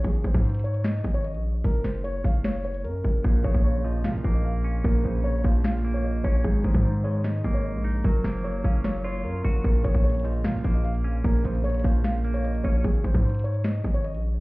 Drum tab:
HH |x-x-x-x-xxxxx-x-x-x-x-x-x-x-----|x-x-x-x-x---o-x-x-x-x-x-x-------|--------------------------------|--------------------------------|
SD |----------------o---------------|----o-----------o---------------|----------------o---------------|----------------o---------------|
BD |o---o-o-------------o-----------|o-----------o---------------o---|o---o-o-------------o-----------|o-----------o---------------o---|

HH |--------------------------------|--------------------------------|x-x-x-x-xxxxx-x-x-x-x-x-x-x-----|x-x-x-x-xxxxx-x-x-x-x-x-x-x-----|
SD |----------------o---------------|----o-----------o---------------|----------------o---------------|----------------o---------------|
BD |o---o-o-------------o-----------|o-----------o---------------o---|o---o-o-------------o-----------|o-----------o---------------o---|

HH |x-x-x-x-xxxxx-x-x-x-x-x-x-x-----|
SD |----------------o---------------|
BD |o---o-o-------------o-----------|